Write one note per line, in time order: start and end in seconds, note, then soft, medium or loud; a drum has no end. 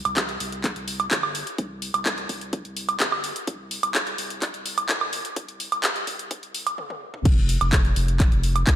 0.05 0.37 C2 medium
0.05 closed hi-hat soft
0.05 high woodblock medium
0.17 kick loud
0.17 clap loud
0.17 closed hi-hat medium
0.29 closed hi-hat soft
0.40 0.73 C2 loud
0.40 open hi-hat loud
0.52 closed hi-hat soft
0.64 kick loud
0.64 clap medium
0.64 closed hi-hat medium
0.76 1.08 C2 loud
0.76 closed hi-hat soft
0.88 open hi-hat loud
1.00 closed hi-hat soft
1.00 high woodblock medium
1.11 1.44 G1 medium
1.11 kick loud
1.11 clap loud
1.11 closed hi-hat medium
1.23 high woodblock medium
1.35 open hi-hat loud
1.47 closed hi-hat medium
1.58 1.91 C2 loud
1.58 kick loud
1.58 closed hi-hat medium
1.82 open hi-hat loud
1.94 2.26 C2 loud
1.94 closed hi-hat medium
1.94 high woodblock medium
2.06 kick loud
2.06 clap loud
2.06 closed hi-hat medium
2.18 closed hi-hat soft
2.29 2.62 C2 loud
2.29 kick medium
2.29 open hi-hat loud
2.41 closed hi-hat soft
2.53 kick loud
2.53 closed hi-hat medium
2.65 2.97 C2 loud
2.65 closed hi-hat soft
2.77 open hi-hat loud
2.89 closed hi-hat medium
2.89 high woodblock medium
3.00 3.33 G1 medium
3.00 kick loud
3.00 clap loud
3.00 closed hi-hat medium
3.12 high woodblock medium
3.24 open hi-hat loud
3.36 closed hi-hat medium
3.47 3.80 C2 medium
3.47 kick loud
3.47 closed hi-hat medium
3.71 open hi-hat loud
3.83 4.15 C2 loud
3.83 closed hi-hat medium
3.83 high woodblock medium
3.95 kick loud
3.95 clap loud
3.95 closed hi-hat medium
4.07 closed hi-hat soft
4.18 4.51 C2 loud
4.18 open hi-hat loud
4.30 closed hi-hat medium
4.42 kick loud
4.42 clap medium
4.42 closed hi-hat medium
4.54 4.86 C2 loud
4.54 closed hi-hat soft
4.66 open hi-hat loud
4.78 closed hi-hat medium
4.78 high woodblock medium
4.89 5.22 G1 medium
4.89 kick loud
4.89 clap loud
4.89 closed hi-hat medium
5.01 high woodblock medium
5.13 open hi-hat loud
5.25 closed hi-hat medium
5.36 5.69 C2 medium
5.36 kick loud
5.36 closed hi-hat medium
5.49 closed hi-hat soft
5.60 open hi-hat loud
5.72 6.04 C2 loud
5.72 closed hi-hat medium
5.72 high woodblock medium
5.84 kick loud
5.84 clap loud
5.84 closed hi-hat medium
5.96 closed hi-hat soft
6.07 6.40 C2 loud
6.07 kick medium
6.07 open hi-hat loud
6.19 closed hi-hat medium
6.31 kick loud
6.31 closed hi-hat medium
6.43 6.75 C2 medium
6.43 closed hi-hat soft
6.54 open hi-hat loud
6.67 closed hi-hat medium
6.67 high woodblock medium
6.78 high tom medium
6.90 high tom medium
7.14 mid tom medium
7.25 7.58 F1 loud
7.25 kick loud
7.25 closed hi-hat medium
7.25 crash loud
7.49 open hi-hat loud
7.61 7.93 F1 medium
7.61 closed hi-hat medium
7.61 high woodblock medium
7.73 kick loud
7.73 clap loud
7.73 closed hi-hat medium
7.85 closed hi-hat soft
7.96 8.29 F1 loud
7.96 open hi-hat loud
8.08 closed hi-hat medium
8.20 kick loud
8.20 clap medium
8.20 closed hi-hat medium
8.32 8.64 F1 loud
8.32 closed hi-hat soft
8.43 open hi-hat loud
8.56 closed hi-hat medium
8.56 high woodblock medium
8.67 8.76 C2 medium
8.67 kick loud
8.67 clap loud
8.67 closed hi-hat medium